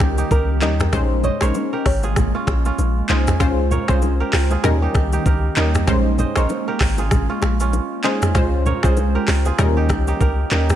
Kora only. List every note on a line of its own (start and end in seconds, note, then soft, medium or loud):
0.00 0.18 D#4 medium
0.00 1.08 F4 medium
0.00 0.18 G4 medium
0.00 0.31 A#4 medium
0.00 0.13 C5 medium
0.18 0.62 D#4 medium
0.18 0.31 G4 medium
0.31 0.62 G4 medium
0.31 1.42 A#4 medium
0.62 2.25 D#4 medium
0.62 1.73 G4 medium
1.24 1.48 C5 medium
1.24 2.31 D#5 medium
1.42 1.72 A#4 medium
1.42 2.57 C#5 medium
1.73 2.10 G4 medium
1.73 3.00 A#4 medium
2.04 2.34 F4 medium
2.04 3.09 G#4 medium
2.35 2.66 C#4 medium
2.35 2.65 F4 medium
2.66 3.95 C#4 medium
2.66 3.10 F4 medium
3.10 4.52 F4 medium
3.10 3.90 G#4 medium
3.71 4.20 A#4 medium
3.71 3.95 C#5 medium
3.89 4.27 G#4 medium
3.89 5.08 C5 medium
4.20 4.57 G4 medium
4.20 5.26 A#4 medium
4.51 6.03 F4 medium
4.51 4.88 G#4 medium
4.82 5.13 D#4 medium
4.82 5.13 G4 medium
5.13 5.57 D#4 medium
5.13 5.27 G4 medium
5.26 5.57 G4 medium
5.26 6.37 A#4 medium
5.57 7.20 D#4 medium
5.57 6.68 G4 medium
6.19 6.43 C5 medium
6.19 7.26 D#5 medium
6.37 6.67 A#4 medium
6.37 7.51 C#5 medium
6.68 7.05 G4 medium
6.68 7.95 A#4 medium
6.99 7.29 F4 medium
6.99 8.04 G#4 medium
7.30 7.61 C#4 medium
7.30 7.60 F4 medium
7.60 8.90 C#4 medium
7.60 8.05 F4 medium
8.04 9.46 F4 medium
8.04 8.85 G#4 medium
8.66 9.15 A#4 medium
8.66 8.90 C#5 medium
8.84 9.22 G#4 medium
8.84 10.03 C5 medium
9.15 9.52 G4 medium
9.15 10.20 A#4 medium
9.46 10.76 F4 medium
9.46 9.83 G#4 medium
9.77 10.08 D#4 medium
9.77 10.07 G4 medium
10.08 10.52 D#4 medium
10.08 10.21 G4 medium
10.21 10.51 G4 medium
10.21 10.76 A#4 medium
10.52 10.76 D#4 medium
10.52 10.76 G4 medium